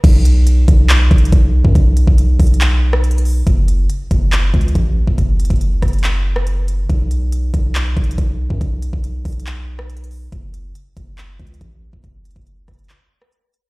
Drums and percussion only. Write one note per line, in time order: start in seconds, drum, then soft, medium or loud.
0.04 kick loud
0.04 closed hi-hat medium
0.04 crash loud
0.25 closed hi-hat medium
0.47 closed hi-hat medium
0.68 kick loud
0.68 closed hi-hat medium
0.89 clap loud
0.89 closed hi-hat medium
1.11 kick loud
1.11 closed hi-hat soft
1.18 closed hi-hat medium
1.25 closed hi-hat medium
1.32 kick loud
1.32 closed hi-hat medium
1.65 kick loud
1.75 kick loud
1.75 closed hi-hat medium
1.97 closed hi-hat medium
2.07 kick loud
2.18 closed hi-hat medium
2.40 kick loud
2.40 closed hi-hat medium
2.40 open hi-hat medium
2.47 closed hi-hat medium
2.54 closed hi-hat medium
2.61 clap loud
2.61 closed hi-hat medium
2.93 cross-stick loud
3.04 closed hi-hat medium
3.11 closed hi-hat medium
3.18 closed hi-hat medium
3.25 open hi-hat medium
3.47 kick loud
3.47 closed hi-hat medium
3.68 closed hi-hat medium
3.90 closed hi-hat medium
4.11 kick loud
4.11 closed hi-hat medium
4.32 clap loud
4.32 closed hi-hat medium
4.54 kick loud
4.54 closed hi-hat soft
4.61 closed hi-hat medium
4.68 closed hi-hat medium
4.75 kick loud
4.75 closed hi-hat medium
5.07 kick loud
5.18 kick loud
5.18 closed hi-hat medium
5.40 closed hi-hat medium
5.45 closed hi-hat medium
5.50 kick loud
5.50 closed hi-hat medium
5.56 closed hi-hat soft
5.61 closed hi-hat medium
5.82 kick loud
5.82 cross-stick medium
5.82 closed hi-hat medium
5.88 closed hi-hat medium
5.93 closed hi-hat medium
5.99 closed hi-hat medium
6.04 clap loud
6.04 closed hi-hat medium
6.36 cross-stick loud
6.47 closed hi-hat medium
6.68 closed hi-hat medium
6.90 kick loud
6.90 closed hi-hat medium
7.11 closed hi-hat medium
7.32 closed hi-hat medium
7.54 kick loud
7.54 closed hi-hat medium
7.75 clap loud
7.75 closed hi-hat medium
7.97 kick loud
7.97 closed hi-hat soft
8.04 closed hi-hat medium
8.11 closed hi-hat medium
8.18 kick loud
8.18 closed hi-hat medium
8.50 kick medium
8.61 kick loud
8.61 closed hi-hat medium
8.82 closed hi-hat medium
8.93 kick loud
9.04 closed hi-hat medium
9.25 kick loud
9.25 closed hi-hat medium
9.25 open hi-hat medium
9.32 closed hi-hat medium
9.40 closed hi-hat medium
9.47 clap loud
9.47 closed hi-hat medium
9.79 cross-stick loud
9.90 closed hi-hat medium
9.97 closed hi-hat medium
10.04 closed hi-hat medium
10.11 open hi-hat medium
10.32 kick loud
10.32 closed hi-hat medium
10.54 closed hi-hat medium
10.75 closed hi-hat medium
10.97 kick loud
10.97 closed hi-hat medium
11.18 clap loud
11.18 closed hi-hat medium
11.40 kick loud
11.40 closed hi-hat soft
11.47 closed hi-hat medium
11.54 closed hi-hat medium
11.61 kick loud
11.61 closed hi-hat medium
11.93 kick medium
12.04 kick loud
12.04 closed hi-hat medium
12.25 closed hi-hat medium
12.31 closed hi-hat medium
12.36 kick loud
12.36 closed hi-hat medium
12.41 closed hi-hat soft
12.47 closed hi-hat medium
12.68 kick loud
12.68 cross-stick medium
12.68 closed hi-hat medium
12.73 closed hi-hat medium
12.79 closed hi-hat medium
12.84 closed hi-hat medium
12.89 clap loud
12.89 closed hi-hat medium
13.22 cross-stick loud
13.32 closed hi-hat medium
13.54 closed hi-hat medium